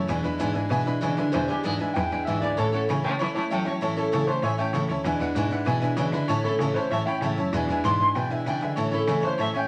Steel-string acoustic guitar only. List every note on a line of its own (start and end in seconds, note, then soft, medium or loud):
0.08 0.24 E2 medium
0.08 0.24 B2 medium
0.08 0.24 E3 medium
0.08 0.24 G#3 medium
0.08 0.23 D4 medium
0.08 0.22 E4 medium
0.24 0.39 E3 medium
0.24 0.39 G#3 medium
0.24 0.39 D4 medium
0.24 0.40 E4 medium
0.39 0.55 E2 medium
0.39 0.55 B2 medium
0.39 0.55 E3 medium
0.39 0.56 G#3 loud
0.39 0.55 D4 loud
0.39 0.54 E4 loud
0.55 0.69 E3 medium
0.55 0.70 G#3 medium
0.55 0.71 D4 medium
0.55 0.71 E4 medium
0.70 0.86 E3 medium
0.70 0.86 G#3 medium
0.70 0.86 D4 medium
0.70 0.85 E4 medium
0.86 1.00 E3 medium
0.86 1.01 G#3 medium
0.86 1.01 D4 medium
0.86 1.02 E4 medium
1.01 1.17 E2 medium
1.01 1.17 B2 medium
1.01 1.17 E3 medium
1.01 1.18 G#3 medium
1.01 1.17 D4 loud
1.01 1.16 E4 loud
1.17 1.31 E3 medium
1.17 1.32 G#3 medium
1.17 1.32 D4 medium
1.17 1.32 E4 medium
1.32 1.48 E2 medium
1.32 1.48 B2 medium
1.32 1.48 E3 medium
1.32 1.48 G#3 medium
1.32 1.47 D4 medium
1.32 1.47 E4 medium
1.48 1.63 E3 soft
1.48 1.63 G#3 medium
1.48 1.64 D4 medium
1.48 1.64 E4 medium
1.63 1.79 E2 medium
1.63 1.79 B2 medium
1.63 1.80 E3 medium
1.63 1.79 G#3 medium
1.63 1.79 D4 medium
1.63 1.78 E4 medium
1.79 1.94 E3 soft
1.79 1.95 G#3 soft
1.79 1.95 D4 medium
1.79 1.95 E4 medium
1.96 2.11 E3 medium
1.96 2.11 G#3 medium
1.96 2.11 D4 medium
1.96 2.10 E4 medium
2.11 2.26 E3 medium
2.11 2.26 G#3 medium
2.11 2.27 D4 medium
2.11 2.26 E4 medium
2.27 2.42 E2 medium
2.27 2.42 B2 medium
2.27 2.42 E3 medium
2.27 2.42 G#3 medium
2.27 2.41 D4 medium
2.27 2.40 E4 medium
2.42 2.56 E3 medium
2.42 2.58 G#3 medium
2.42 2.57 D4 medium
2.42 2.57 E4 medium
2.57 2.72 A2 medium
2.57 2.73 E3 medium
2.57 2.73 A3 medium
2.57 2.73 C#4 medium
2.57 2.72 E4 medium
2.73 2.88 A3 soft
2.73 2.89 C#4 medium
2.73 2.88 E4 medium
2.89 3.04 A2 medium
2.89 3.04 E3 medium
2.89 3.04 A3 medium
2.89 3.03 C#4 medium
2.89 3.02 E4 medium
3.04 3.19 A3 soft
3.04 3.19 C#4 medium
3.04 3.19 E4 medium
3.19 3.35 E3 medium
3.19 3.35 A3 medium
3.19 3.34 C#4 medium
3.19 3.33 E4 medium
3.35 3.50 A3 soft
3.35 3.51 C#4 soft
3.35 3.50 E4 medium
3.50 3.66 A2 medium
3.50 3.66 E3 medium
3.50 3.66 A3 medium
3.50 3.65 C#4 medium
3.50 3.64 E4 medium
3.65 3.81 A3 soft
3.65 3.81 C#4 medium
3.65 3.81 E4 medium
3.81 3.96 A2 medium
3.81 3.97 E3 medium
3.81 3.97 A3 medium
3.81 3.97 C#4 medium
3.81 3.95 E4 medium
3.97 4.11 A3 medium
3.97 4.12 C#4 medium
3.97 4.12 E4 medium
4.12 4.28 A2 medium
4.12 4.28 E3 medium
4.12 4.28 A3 medium
4.12 4.27 C#4 medium
4.12 4.26 E4 medium
4.27 4.43 A3 soft
4.27 4.43 C#4 soft
4.27 4.43 E4 soft
4.43 4.58 E3 medium
4.43 4.59 A3 medium
4.43 4.58 C#4 medium
4.43 4.57 E4 medium
4.58 4.74 A3 soft
4.58 4.74 C#4 medium
4.58 4.74 E4 medium
4.74 4.89 A2 medium
4.74 4.90 E3 medium
4.74 4.90 A3 medium
4.74 4.90 C#4 medium
4.74 4.88 E4 medium
4.89 5.05 A3 soft
4.89 5.05 C#4 medium
4.89 5.05 E4 medium
5.05 5.20 E2 medium
5.05 5.21 B2 medium
5.05 5.21 E3 medium
5.05 5.20 G#3 medium
5.05 5.20 D4 medium
5.05 5.19 E4 medium
5.20 5.35 E3 medium
5.20 5.35 G#3 medium
5.20 5.36 D4 medium
5.20 5.36 E4 medium
5.36 5.51 E2 medium
5.36 5.51 B2 loud
5.36 5.52 E3 medium
5.36 5.51 G#3 medium
5.36 5.50 D4 loud
5.36 5.49 E4 loud
5.51 5.65 E3 soft
5.51 5.66 G#3 soft
5.51 5.67 D4 medium
5.51 5.67 E4 medium
5.66 5.82 E3 medium
5.66 5.82 G#3 medium
5.66 5.81 D4 medium
5.66 5.80 E4 medium
5.82 5.96 E3 medium
5.82 5.96 G#3 medium
5.82 5.97 D4 medium
5.82 5.97 E4 medium
5.97 6.13 E2 medium
5.97 6.13 B2 medium
5.97 6.13 E3 medium
5.97 6.13 G#3 medium
5.97 6.13 D4 medium
5.97 6.12 E4 loud
6.13 6.28 E3 medium
6.13 6.29 G#3 medium
6.13 6.29 D4 medium
6.13 6.29 E4 medium
6.28 6.44 A2 medium
6.28 6.44 E3 medium
6.28 6.45 A3 medium
6.28 6.45 C#4 loud
6.28 6.43 E4 loud
6.45 6.60 A3 medium
6.45 6.61 C#4 medium
6.45 6.60 E4 medium
6.61 6.76 A2 medium
6.61 6.76 E3 medium
6.61 6.76 A3 medium
6.61 6.76 C#4 medium
6.61 6.75 E4 medium
6.76 6.92 A3 soft
6.76 6.92 C#4 soft
6.76 6.91 E4 medium
6.92 7.07 E3 medium
6.92 7.07 A3 medium
6.92 7.07 C#4 medium
6.92 7.05 E4 medium
7.07 7.22 A3 soft
7.07 7.22 C#4 medium
7.07 7.22 E4 medium
7.22 7.38 A2 medium
7.22 7.38 E3 medium
7.22 7.38 A3 medium
7.22 7.38 C#4 medium
7.22 7.36 E4 medium
7.37 7.54 A3 medium
7.37 7.54 C#4 soft
7.37 7.53 E4 medium
7.53 7.68 E2 medium
7.53 7.68 B2 medium
7.53 7.69 E3 medium
7.53 7.69 G#3 medium
7.53 7.69 D4 medium
7.53 7.67 E4 medium
7.69 7.84 E3 medium
7.69 7.84 G#3 medium
7.69 7.84 D4 medium
7.69 7.84 E4 medium
7.84 7.99 E2 medium
7.84 8.00 B2 medium
7.84 8.00 E3 medium
7.84 8.00 G#3 medium
7.84 7.99 D4 medium
7.84 7.99 E4 medium
8.00 8.14 E3 soft
8.00 8.14 G#3 soft
8.00 8.15 D4 soft
8.00 8.15 E4 medium
8.15 8.30 E3 medium
8.15 8.30 G#3 medium
8.15 8.30 D4 medium
8.15 8.29 E4 medium
8.30 8.46 E3 soft
8.30 8.46 G#3 soft
8.30 8.46 D4 medium
8.30 8.46 E4 medium
8.46 8.62 E2 medium
8.46 8.62 B2 medium
8.46 8.62 E3 medium
8.46 8.62 G#3 medium
8.46 8.61 D4 medium
8.46 8.60 E4 medium
8.61 8.76 E3 medium
8.61 8.77 G#3 medium
8.61 8.77 D4 medium
8.61 8.77 E4 medium
8.77 8.92 A2 medium
8.77 8.93 E3 medium
8.77 8.93 A3 medium
8.77 8.92 C#4 medium
8.77 8.90 E4 medium
8.91 9.07 A3 soft
8.91 9.08 C#4 soft
8.91 9.07 E4 medium
9.07 9.23 A2 medium
9.07 9.23 E3 medium
9.07 9.24 A3 medium
9.07 9.23 C#4 medium
9.07 9.22 E4 medium
9.23 9.38 A3 soft
9.23 9.39 C#4 medium
9.23 9.39 E4 medium
9.39 9.54 E3 medium
9.39 9.55 A3 medium
9.39 9.54 C#4 medium
9.39 9.53 E4 medium
9.54 9.68 A3 medium
9.54 9.68 C#4 medium
9.54 9.68 E4 medium